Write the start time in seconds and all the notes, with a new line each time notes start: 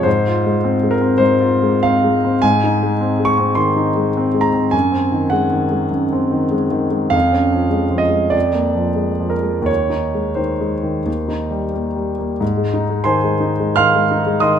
0.03 G#2 C5
0.27 F4
0.46 G#3
0.64 C4
0.83 G#3
0.91 A#4
1.01 C4
1.18 G#2 C5
1.40 F4
1.63 G#3
1.83 C4 F5
2.04 G#3
2.25 C4
2.42 G#2 G#5
2.64 D#4
2.83 G#3
3.01 C4
3.19 G#3
3.25 C#6
3.38 C4
3.55 D#3 C6
3.77 D#4
3.96 G#3
4.17 C4
4.34 G#3
4.41 A#5
4.53 C4
4.71 F#2 G#5
4.92 C4
5.12 D#3
5.30 G#3 F#5
5.53 D#3
5.71 G#3
5.91 F#2
6.13 C4
6.31 D#3
6.51 G#3
6.71 D#3
6.90 G#3
7.10 F2 F5
7.32 C#4
7.52 F3
7.70 G#3
7.91 F3
7.98 D#5
8.09 G#3
8.30 F2 D5
8.53 A#3
8.75 F3
8.96 G#3
9.20 F3
9.30 A#4
9.42 G#3
9.62 D#2
9.66 C#5
9.90 D#4
10.15 G#3
10.35 D#3 C5
10.61 G#3
10.83 D#3
11.06 D#2
11.28 D#4
11.51 G3
11.74 A#3
11.96 G3
12.19 A#3
12.41 G#2
12.57 G#3
12.74 D#4
12.90 G#3
13.04 D#3 C5 G#5 C6
13.24 G#3
13.40 D#4
13.60 G#3
13.76 D#3 F5 C6 F6
13.95 G#3
14.11 D#4
14.27 G#3
14.40 D#3 D#5 C6 D#6